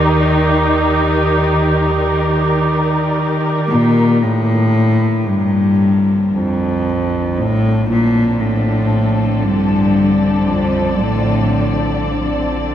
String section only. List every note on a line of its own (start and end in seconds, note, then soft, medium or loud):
0.00 4.22 D#3 medium
0.00 4.25 D#4 medium
0.00 5.82 G4 medium
0.00 7.55 A#4 medium
0.00 4.24 D5 medium
4.24 12.75 D3 medium
4.99 12.75 F3 medium
5.35 12.75 A4 soft
5.93 12.75 C4 medium
8.07 12.75 D5 medium